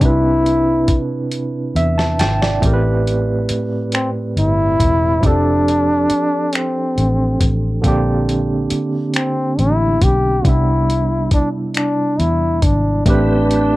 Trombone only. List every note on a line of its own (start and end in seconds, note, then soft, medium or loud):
0.04 1.00 E4 medium
3.94 4.10 C4 medium
4.38 5.28 E4 loud
5.26 6.57 D4 medium
6.56 7.53 C4 medium
9.15 9.61 C4 medium
9.60 10.05 E4 medium
10.03 10.49 G4 medium
10.47 11.33 E4 medium
11.34 11.50 D4 medium
11.76 12.21 D4 medium
12.20 12.65 E4 medium
12.64 13.06 D4 medium
13.07 13.76 D4 medium